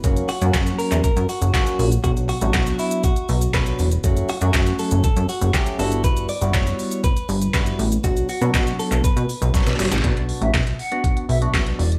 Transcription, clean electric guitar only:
X:1
M:4/4
L:1/16
Q:1/4=120
K:Bm
V:1 name="Clean electric guitar"
z2 F4 ^A2 A2 F2 F3 z | F2 F2 F2 E2 F4 B3 z | z2 F4 A2 A2 F2 G2 A2 | B2 d2 c4 B4 B3 z |
F2 F4 A2 B6 z2 | z16 |]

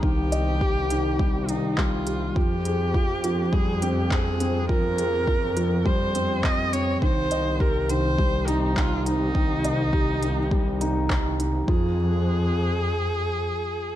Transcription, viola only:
X:1
M:4/4
L:1/8
Q:1/4=103
K:Fm
V:1 name="Viola"
G4- G E F2 | G4 A G A2 | B4 c2 e d | c2 B c2 E F E- |
E6 z2 | A8 |]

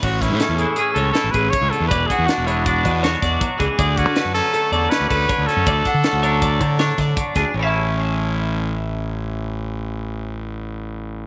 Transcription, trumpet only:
X:1
M:5/4
L:1/8
Q:1/4=159
K:A
V:1 name="Trumpet"
F E2 G G A A B c A | B G F E F2 z4 | G F2 A2 A B B2 A- | A8 z2 |
z8 z2 | z8 z2 |]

